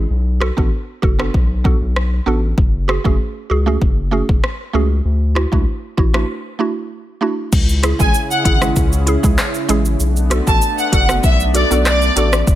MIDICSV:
0, 0, Header, 1, 6, 480
1, 0, Start_track
1, 0, Tempo, 618557
1, 80, Time_signature, 4, 2, 24, 8
1, 9740, End_track
2, 0, Start_track
2, 0, Title_t, "Violin section"
2, 0, Program_c, 0, 48
2, 6208, Note_on_c, 0, 80, 83
2, 6289, Note_off_c, 0, 80, 0
2, 6446, Note_on_c, 0, 78, 79
2, 6528, Note_off_c, 0, 78, 0
2, 6561, Note_on_c, 0, 78, 72
2, 6652, Note_off_c, 0, 78, 0
2, 8126, Note_on_c, 0, 81, 78
2, 8208, Note_off_c, 0, 81, 0
2, 8366, Note_on_c, 0, 78, 75
2, 8448, Note_off_c, 0, 78, 0
2, 8479, Note_on_c, 0, 78, 85
2, 8571, Note_off_c, 0, 78, 0
2, 8721, Note_on_c, 0, 76, 93
2, 8812, Note_off_c, 0, 76, 0
2, 8961, Note_on_c, 0, 74, 77
2, 9052, Note_off_c, 0, 74, 0
2, 9199, Note_on_c, 0, 74, 94
2, 9545, Note_off_c, 0, 74, 0
2, 9740, End_track
3, 0, Start_track
3, 0, Title_t, "Synth pluck"
3, 0, Program_c, 1, 84
3, 314, Note_on_c, 1, 66, 84
3, 326, Note_on_c, 1, 69, 95
3, 368, Note_off_c, 1, 66, 0
3, 374, Note_off_c, 1, 69, 0
3, 440, Note_on_c, 1, 59, 80
3, 444, Note_on_c, 1, 62, 70
3, 448, Note_on_c, 1, 66, 73
3, 452, Note_on_c, 1, 69, 86
3, 534, Note_off_c, 1, 59, 0
3, 536, Note_off_c, 1, 62, 0
3, 538, Note_off_c, 1, 66, 0
3, 540, Note_off_c, 1, 69, 0
3, 793, Note_on_c, 1, 66, 88
3, 805, Note_on_c, 1, 69, 94
3, 847, Note_off_c, 1, 66, 0
3, 853, Note_off_c, 1, 69, 0
3, 921, Note_on_c, 1, 59, 77
3, 925, Note_on_c, 1, 62, 70
3, 928, Note_on_c, 1, 66, 70
3, 933, Note_on_c, 1, 69, 84
3, 1014, Note_off_c, 1, 59, 0
3, 1016, Note_off_c, 1, 62, 0
3, 1018, Note_off_c, 1, 66, 0
3, 1020, Note_off_c, 1, 69, 0
3, 1275, Note_on_c, 1, 59, 83
3, 1279, Note_on_c, 1, 62, 76
3, 1282, Note_on_c, 1, 66, 76
3, 1287, Note_on_c, 1, 69, 93
3, 1379, Note_off_c, 1, 59, 0
3, 1381, Note_off_c, 1, 62, 0
3, 1383, Note_off_c, 1, 66, 0
3, 1385, Note_off_c, 1, 69, 0
3, 1755, Note_on_c, 1, 59, 86
3, 1758, Note_on_c, 1, 62, 80
3, 1763, Note_on_c, 1, 66, 76
3, 1767, Note_on_c, 1, 69, 94
3, 1859, Note_off_c, 1, 59, 0
3, 1861, Note_off_c, 1, 62, 0
3, 1863, Note_off_c, 1, 66, 0
3, 1865, Note_off_c, 1, 69, 0
3, 2234, Note_on_c, 1, 66, 89
3, 2247, Note_on_c, 1, 68, 94
3, 2288, Note_off_c, 1, 66, 0
3, 2294, Note_off_c, 1, 68, 0
3, 2362, Note_on_c, 1, 57, 78
3, 2365, Note_on_c, 1, 61, 72
3, 2368, Note_on_c, 1, 66, 75
3, 2373, Note_on_c, 1, 68, 88
3, 2455, Note_off_c, 1, 57, 0
3, 2456, Note_off_c, 1, 61, 0
3, 2458, Note_off_c, 1, 66, 0
3, 2460, Note_off_c, 1, 68, 0
3, 2714, Note_on_c, 1, 66, 83
3, 2725, Note_on_c, 1, 68, 98
3, 2768, Note_off_c, 1, 66, 0
3, 2774, Note_off_c, 1, 68, 0
3, 2841, Note_on_c, 1, 57, 79
3, 2845, Note_on_c, 1, 61, 72
3, 2848, Note_on_c, 1, 66, 74
3, 2853, Note_on_c, 1, 68, 87
3, 2934, Note_off_c, 1, 57, 0
3, 2936, Note_off_c, 1, 61, 0
3, 2938, Note_off_c, 1, 66, 0
3, 2940, Note_off_c, 1, 68, 0
3, 3192, Note_on_c, 1, 57, 87
3, 3196, Note_on_c, 1, 61, 79
3, 3199, Note_on_c, 1, 66, 81
3, 3204, Note_on_c, 1, 68, 92
3, 3298, Note_off_c, 1, 57, 0
3, 3300, Note_off_c, 1, 61, 0
3, 3301, Note_off_c, 1, 66, 0
3, 3304, Note_off_c, 1, 68, 0
3, 3673, Note_on_c, 1, 57, 85
3, 3677, Note_on_c, 1, 61, 79
3, 3681, Note_on_c, 1, 66, 73
3, 3685, Note_on_c, 1, 68, 96
3, 3778, Note_off_c, 1, 57, 0
3, 3780, Note_off_c, 1, 61, 0
3, 3783, Note_off_c, 1, 66, 0
3, 3784, Note_off_c, 1, 68, 0
3, 4154, Note_on_c, 1, 64, 86
3, 4165, Note_on_c, 1, 66, 93
3, 4208, Note_off_c, 1, 64, 0
3, 4214, Note_off_c, 1, 66, 0
3, 4281, Note_on_c, 1, 57, 80
3, 4286, Note_on_c, 1, 62, 74
3, 4289, Note_on_c, 1, 64, 73
3, 4294, Note_on_c, 1, 66, 88
3, 4374, Note_off_c, 1, 57, 0
3, 4377, Note_off_c, 1, 62, 0
3, 4378, Note_off_c, 1, 64, 0
3, 4381, Note_off_c, 1, 66, 0
3, 4636, Note_on_c, 1, 64, 88
3, 4647, Note_on_c, 1, 66, 92
3, 4689, Note_off_c, 1, 64, 0
3, 4695, Note_off_c, 1, 66, 0
3, 4761, Note_on_c, 1, 57, 78
3, 4765, Note_on_c, 1, 62, 73
3, 4769, Note_on_c, 1, 64, 73
3, 4774, Note_on_c, 1, 66, 87
3, 4855, Note_off_c, 1, 57, 0
3, 4856, Note_off_c, 1, 62, 0
3, 4859, Note_off_c, 1, 64, 0
3, 4861, Note_off_c, 1, 66, 0
3, 5113, Note_on_c, 1, 57, 84
3, 5117, Note_on_c, 1, 62, 76
3, 5121, Note_on_c, 1, 64, 75
3, 5125, Note_on_c, 1, 66, 93
3, 5218, Note_off_c, 1, 57, 0
3, 5220, Note_off_c, 1, 62, 0
3, 5222, Note_off_c, 1, 64, 0
3, 5224, Note_off_c, 1, 66, 0
3, 5593, Note_on_c, 1, 57, 79
3, 5598, Note_on_c, 1, 62, 78
3, 5602, Note_on_c, 1, 64, 80
3, 5606, Note_on_c, 1, 66, 96
3, 5698, Note_off_c, 1, 57, 0
3, 5701, Note_off_c, 1, 62, 0
3, 5703, Note_off_c, 1, 64, 0
3, 5705, Note_off_c, 1, 66, 0
3, 6074, Note_on_c, 1, 64, 74
3, 6086, Note_on_c, 1, 68, 90
3, 6128, Note_off_c, 1, 64, 0
3, 6134, Note_off_c, 1, 68, 0
3, 6200, Note_on_c, 1, 56, 70
3, 6205, Note_on_c, 1, 61, 68
3, 6208, Note_on_c, 1, 64, 67
3, 6213, Note_on_c, 1, 68, 80
3, 6294, Note_off_c, 1, 56, 0
3, 6296, Note_off_c, 1, 61, 0
3, 6298, Note_off_c, 1, 64, 0
3, 6300, Note_off_c, 1, 68, 0
3, 6555, Note_on_c, 1, 64, 77
3, 6566, Note_on_c, 1, 68, 88
3, 6608, Note_off_c, 1, 64, 0
3, 6614, Note_off_c, 1, 68, 0
3, 6682, Note_on_c, 1, 56, 69
3, 6686, Note_on_c, 1, 61, 65
3, 6689, Note_on_c, 1, 64, 65
3, 6694, Note_on_c, 1, 68, 75
3, 6775, Note_off_c, 1, 56, 0
3, 6777, Note_off_c, 1, 61, 0
3, 6778, Note_off_c, 1, 64, 0
3, 6781, Note_off_c, 1, 68, 0
3, 7035, Note_on_c, 1, 64, 90
3, 7047, Note_on_c, 1, 68, 104
3, 7088, Note_off_c, 1, 64, 0
3, 7094, Note_off_c, 1, 68, 0
3, 7163, Note_on_c, 1, 56, 86
3, 7167, Note_on_c, 1, 61, 77
3, 7171, Note_on_c, 1, 64, 78
3, 7175, Note_on_c, 1, 68, 96
3, 7256, Note_off_c, 1, 56, 0
3, 7257, Note_off_c, 1, 61, 0
3, 7259, Note_off_c, 1, 64, 0
3, 7261, Note_off_c, 1, 68, 0
3, 7516, Note_on_c, 1, 56, 90
3, 7519, Note_on_c, 1, 61, 82
3, 7523, Note_on_c, 1, 64, 80
3, 7527, Note_on_c, 1, 68, 102
3, 7620, Note_off_c, 1, 56, 0
3, 7621, Note_off_c, 1, 61, 0
3, 7623, Note_off_c, 1, 64, 0
3, 7625, Note_off_c, 1, 68, 0
3, 7994, Note_on_c, 1, 66, 77
3, 8007, Note_on_c, 1, 69, 86
3, 8048, Note_off_c, 1, 66, 0
3, 8054, Note_off_c, 1, 69, 0
3, 8124, Note_on_c, 1, 59, 73
3, 8128, Note_on_c, 1, 62, 67
3, 8131, Note_on_c, 1, 66, 67
3, 8136, Note_on_c, 1, 69, 81
3, 8216, Note_off_c, 1, 59, 0
3, 8218, Note_off_c, 1, 62, 0
3, 8220, Note_off_c, 1, 66, 0
3, 8222, Note_off_c, 1, 69, 0
3, 8475, Note_on_c, 1, 66, 77
3, 8488, Note_on_c, 1, 69, 89
3, 8528, Note_off_c, 1, 66, 0
3, 8535, Note_off_c, 1, 69, 0
3, 8603, Note_on_c, 1, 59, 73
3, 8607, Note_on_c, 1, 62, 66
3, 8611, Note_on_c, 1, 66, 62
3, 8615, Note_on_c, 1, 69, 76
3, 8695, Note_off_c, 1, 59, 0
3, 8697, Note_off_c, 1, 62, 0
3, 8699, Note_off_c, 1, 66, 0
3, 8701, Note_off_c, 1, 69, 0
3, 8956, Note_on_c, 1, 66, 74
3, 8967, Note_on_c, 1, 69, 87
3, 9009, Note_off_c, 1, 66, 0
3, 9014, Note_off_c, 1, 69, 0
3, 9083, Note_on_c, 1, 59, 68
3, 9088, Note_on_c, 1, 62, 66
3, 9092, Note_on_c, 1, 66, 63
3, 9095, Note_on_c, 1, 69, 81
3, 9175, Note_off_c, 1, 59, 0
3, 9178, Note_off_c, 1, 62, 0
3, 9180, Note_off_c, 1, 66, 0
3, 9182, Note_off_c, 1, 69, 0
3, 9436, Note_on_c, 1, 59, 72
3, 9440, Note_on_c, 1, 62, 72
3, 9445, Note_on_c, 1, 66, 71
3, 9448, Note_on_c, 1, 69, 86
3, 9540, Note_off_c, 1, 59, 0
3, 9542, Note_off_c, 1, 62, 0
3, 9544, Note_off_c, 1, 66, 0
3, 9546, Note_off_c, 1, 69, 0
3, 9740, End_track
4, 0, Start_track
4, 0, Title_t, "Analog synth pad"
4, 0, Program_c, 2, 89
4, 5839, Note_on_c, 2, 64, 77
4, 5840, Note_on_c, 2, 49, 83
4, 5840, Note_on_c, 2, 61, 77
4, 5841, Note_on_c, 2, 68, 93
4, 7741, Note_off_c, 2, 49, 0
4, 7741, Note_off_c, 2, 61, 0
4, 7741, Note_off_c, 2, 64, 0
4, 7741, Note_off_c, 2, 68, 0
4, 7760, Note_on_c, 2, 62, 91
4, 7761, Note_on_c, 2, 57, 83
4, 7761, Note_on_c, 2, 59, 81
4, 9661, Note_off_c, 2, 57, 0
4, 9661, Note_off_c, 2, 59, 0
4, 9661, Note_off_c, 2, 62, 0
4, 9679, Note_on_c, 2, 61, 80
4, 9680, Note_on_c, 2, 54, 83
4, 9680, Note_on_c, 2, 68, 78
4, 9681, Note_on_c, 2, 69, 92
4, 9740, Note_off_c, 2, 54, 0
4, 9740, Note_off_c, 2, 61, 0
4, 9740, Note_off_c, 2, 68, 0
4, 9740, Note_off_c, 2, 69, 0
4, 9740, End_track
5, 0, Start_track
5, 0, Title_t, "Analog synth bass"
5, 0, Program_c, 3, 38
5, 80, Note_on_c, 3, 35, 105
5, 395, Note_off_c, 3, 35, 0
5, 449, Note_on_c, 3, 33, 91
5, 545, Note_off_c, 3, 33, 0
5, 800, Note_on_c, 3, 30, 91
5, 1006, Note_off_c, 3, 30, 0
5, 1042, Note_on_c, 3, 35, 102
5, 1356, Note_off_c, 3, 35, 0
5, 1406, Note_on_c, 3, 35, 91
5, 1709, Note_off_c, 3, 35, 0
5, 1758, Note_on_c, 3, 33, 89
5, 1965, Note_off_c, 3, 33, 0
5, 2000, Note_on_c, 3, 30, 113
5, 2315, Note_off_c, 3, 30, 0
5, 2369, Note_on_c, 3, 30, 95
5, 2465, Note_off_c, 3, 30, 0
5, 2720, Note_on_c, 3, 37, 85
5, 2926, Note_off_c, 3, 37, 0
5, 2961, Note_on_c, 3, 30, 96
5, 3276, Note_off_c, 3, 30, 0
5, 3329, Note_on_c, 3, 30, 86
5, 3425, Note_off_c, 3, 30, 0
5, 3680, Note_on_c, 3, 37, 96
5, 3886, Note_off_c, 3, 37, 0
5, 3920, Note_on_c, 3, 38, 96
5, 4235, Note_off_c, 3, 38, 0
5, 4288, Note_on_c, 3, 37, 92
5, 4385, Note_off_c, 3, 37, 0
5, 4640, Note_on_c, 3, 33, 87
5, 4846, Note_off_c, 3, 33, 0
5, 5840, Note_on_c, 3, 37, 111
5, 6155, Note_off_c, 3, 37, 0
5, 6209, Note_on_c, 3, 33, 87
5, 6305, Note_off_c, 3, 33, 0
5, 6559, Note_on_c, 3, 32, 93
5, 6765, Note_off_c, 3, 32, 0
5, 6801, Note_on_c, 3, 37, 103
5, 7116, Note_off_c, 3, 37, 0
5, 7170, Note_on_c, 3, 37, 93
5, 7266, Note_off_c, 3, 37, 0
5, 7521, Note_on_c, 3, 33, 95
5, 7727, Note_off_c, 3, 33, 0
5, 7761, Note_on_c, 3, 35, 106
5, 8076, Note_off_c, 3, 35, 0
5, 8128, Note_on_c, 3, 33, 89
5, 8225, Note_off_c, 3, 33, 0
5, 8479, Note_on_c, 3, 30, 93
5, 8685, Note_off_c, 3, 30, 0
5, 8720, Note_on_c, 3, 35, 106
5, 9035, Note_off_c, 3, 35, 0
5, 9087, Note_on_c, 3, 35, 95
5, 9390, Note_off_c, 3, 35, 0
5, 9440, Note_on_c, 3, 33, 97
5, 9646, Note_off_c, 3, 33, 0
5, 9680, Note_on_c, 3, 30, 114
5, 9740, Note_off_c, 3, 30, 0
5, 9740, End_track
6, 0, Start_track
6, 0, Title_t, "Drums"
6, 322, Note_on_c, 9, 37, 84
6, 399, Note_off_c, 9, 37, 0
6, 449, Note_on_c, 9, 36, 80
6, 526, Note_off_c, 9, 36, 0
6, 800, Note_on_c, 9, 36, 91
6, 877, Note_off_c, 9, 36, 0
6, 927, Note_on_c, 9, 37, 96
6, 1005, Note_off_c, 9, 37, 0
6, 1042, Note_on_c, 9, 36, 94
6, 1119, Note_off_c, 9, 36, 0
6, 1280, Note_on_c, 9, 36, 100
6, 1358, Note_off_c, 9, 36, 0
6, 1524, Note_on_c, 9, 37, 82
6, 1602, Note_off_c, 9, 37, 0
6, 2000, Note_on_c, 9, 36, 119
6, 2077, Note_off_c, 9, 36, 0
6, 2242, Note_on_c, 9, 37, 85
6, 2320, Note_off_c, 9, 37, 0
6, 2369, Note_on_c, 9, 36, 86
6, 2446, Note_off_c, 9, 36, 0
6, 2961, Note_on_c, 9, 36, 91
6, 3038, Note_off_c, 9, 36, 0
6, 3329, Note_on_c, 9, 36, 89
6, 3407, Note_off_c, 9, 36, 0
6, 3443, Note_on_c, 9, 37, 87
6, 3520, Note_off_c, 9, 37, 0
6, 4162, Note_on_c, 9, 37, 83
6, 4240, Note_off_c, 9, 37, 0
6, 4288, Note_on_c, 9, 36, 80
6, 4366, Note_off_c, 9, 36, 0
6, 4640, Note_on_c, 9, 36, 93
6, 4717, Note_off_c, 9, 36, 0
6, 4767, Note_on_c, 9, 37, 103
6, 4844, Note_off_c, 9, 37, 0
6, 5840, Note_on_c, 9, 36, 121
6, 5840, Note_on_c, 9, 49, 106
6, 5840, Note_on_c, 9, 82, 82
6, 5917, Note_off_c, 9, 82, 0
6, 5918, Note_off_c, 9, 36, 0
6, 5918, Note_off_c, 9, 49, 0
6, 5968, Note_on_c, 9, 82, 50
6, 6045, Note_off_c, 9, 82, 0
6, 6080, Note_on_c, 9, 37, 94
6, 6080, Note_on_c, 9, 42, 80
6, 6080, Note_on_c, 9, 82, 53
6, 6157, Note_off_c, 9, 42, 0
6, 6157, Note_off_c, 9, 82, 0
6, 6158, Note_off_c, 9, 37, 0
6, 6206, Note_on_c, 9, 82, 74
6, 6208, Note_on_c, 9, 36, 89
6, 6284, Note_off_c, 9, 82, 0
6, 6286, Note_off_c, 9, 36, 0
6, 6319, Note_on_c, 9, 82, 76
6, 6397, Note_off_c, 9, 82, 0
6, 6449, Note_on_c, 9, 82, 51
6, 6527, Note_off_c, 9, 82, 0
6, 6559, Note_on_c, 9, 36, 93
6, 6561, Note_on_c, 9, 42, 71
6, 6561, Note_on_c, 9, 82, 51
6, 6637, Note_off_c, 9, 36, 0
6, 6638, Note_off_c, 9, 42, 0
6, 6638, Note_off_c, 9, 82, 0
6, 6686, Note_on_c, 9, 37, 104
6, 6689, Note_on_c, 9, 82, 74
6, 6764, Note_off_c, 9, 37, 0
6, 6767, Note_off_c, 9, 82, 0
6, 6799, Note_on_c, 9, 82, 85
6, 6801, Note_on_c, 9, 36, 97
6, 6877, Note_off_c, 9, 82, 0
6, 6879, Note_off_c, 9, 36, 0
6, 6927, Note_on_c, 9, 82, 55
6, 7004, Note_off_c, 9, 82, 0
6, 7039, Note_on_c, 9, 42, 68
6, 7039, Note_on_c, 9, 82, 48
6, 7117, Note_off_c, 9, 42, 0
6, 7117, Note_off_c, 9, 82, 0
6, 7169, Note_on_c, 9, 36, 95
6, 7169, Note_on_c, 9, 82, 73
6, 7246, Note_off_c, 9, 82, 0
6, 7247, Note_off_c, 9, 36, 0
6, 7279, Note_on_c, 9, 82, 70
6, 7282, Note_on_c, 9, 37, 93
6, 7282, Note_on_c, 9, 39, 92
6, 7357, Note_off_c, 9, 82, 0
6, 7360, Note_off_c, 9, 37, 0
6, 7360, Note_off_c, 9, 39, 0
6, 7406, Note_on_c, 9, 82, 46
6, 7483, Note_off_c, 9, 82, 0
6, 7521, Note_on_c, 9, 42, 84
6, 7521, Note_on_c, 9, 82, 62
6, 7598, Note_off_c, 9, 42, 0
6, 7598, Note_off_c, 9, 82, 0
6, 7646, Note_on_c, 9, 82, 73
6, 7724, Note_off_c, 9, 82, 0
6, 7759, Note_on_c, 9, 82, 79
6, 7837, Note_off_c, 9, 82, 0
6, 7888, Note_on_c, 9, 82, 49
6, 7965, Note_off_c, 9, 82, 0
6, 8001, Note_on_c, 9, 37, 91
6, 8001, Note_on_c, 9, 42, 77
6, 8001, Note_on_c, 9, 82, 53
6, 8078, Note_off_c, 9, 42, 0
6, 8078, Note_off_c, 9, 82, 0
6, 8079, Note_off_c, 9, 37, 0
6, 8126, Note_on_c, 9, 82, 74
6, 8128, Note_on_c, 9, 36, 91
6, 8204, Note_off_c, 9, 82, 0
6, 8205, Note_off_c, 9, 36, 0
6, 8239, Note_on_c, 9, 82, 78
6, 8316, Note_off_c, 9, 82, 0
6, 8369, Note_on_c, 9, 82, 51
6, 8447, Note_off_c, 9, 82, 0
6, 8479, Note_on_c, 9, 36, 95
6, 8480, Note_on_c, 9, 42, 75
6, 8480, Note_on_c, 9, 82, 51
6, 8556, Note_off_c, 9, 36, 0
6, 8558, Note_off_c, 9, 42, 0
6, 8558, Note_off_c, 9, 82, 0
6, 8605, Note_on_c, 9, 37, 102
6, 8608, Note_on_c, 9, 82, 75
6, 8683, Note_off_c, 9, 37, 0
6, 8686, Note_off_c, 9, 82, 0
6, 8718, Note_on_c, 9, 82, 86
6, 8720, Note_on_c, 9, 36, 98
6, 8796, Note_off_c, 9, 82, 0
6, 8798, Note_off_c, 9, 36, 0
6, 8848, Note_on_c, 9, 82, 55
6, 8925, Note_off_c, 9, 82, 0
6, 8959, Note_on_c, 9, 42, 67
6, 8959, Note_on_c, 9, 82, 48
6, 9037, Note_off_c, 9, 42, 0
6, 9037, Note_off_c, 9, 82, 0
6, 9089, Note_on_c, 9, 82, 73
6, 9167, Note_off_c, 9, 82, 0
6, 9200, Note_on_c, 9, 82, 71
6, 9203, Note_on_c, 9, 37, 87
6, 9203, Note_on_c, 9, 39, 90
6, 9278, Note_off_c, 9, 82, 0
6, 9280, Note_off_c, 9, 37, 0
6, 9280, Note_off_c, 9, 39, 0
6, 9326, Note_on_c, 9, 82, 47
6, 9403, Note_off_c, 9, 82, 0
6, 9441, Note_on_c, 9, 42, 80
6, 9441, Note_on_c, 9, 82, 60
6, 9518, Note_off_c, 9, 42, 0
6, 9518, Note_off_c, 9, 82, 0
6, 9567, Note_on_c, 9, 37, 98
6, 9567, Note_on_c, 9, 82, 77
6, 9644, Note_off_c, 9, 82, 0
6, 9645, Note_off_c, 9, 37, 0
6, 9679, Note_on_c, 9, 36, 126
6, 9680, Note_on_c, 9, 82, 83
6, 9740, Note_off_c, 9, 36, 0
6, 9740, Note_off_c, 9, 82, 0
6, 9740, End_track
0, 0, End_of_file